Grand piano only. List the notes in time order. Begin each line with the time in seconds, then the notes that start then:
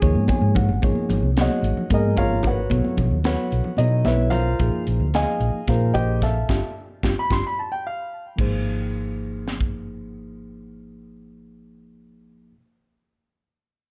Already playing: G#5
1.41 F#4 C#5 D#5 F#5
1.94 D#4 G#4 A#4 D#5
2.18 F4 A#4 C#5 F5
2.47 F#4 B4 C#5 F#5
3.25 F#4 B4 C#5 F#5
3.78 D#4 D#5
4.05 E4 B4 C#5 E5
4.30 F4 A#4 C5 F5
5.15 G#4 D#5 F5 G#5
5.69 F4 A#4 C5 F5
5.94 G4 C5 D#5 G5
6.23 A4 E5 F5 A5
7.19 B5
7.32 C6
7.47 B5
7.59 A5
7.72 G5
7.87 F5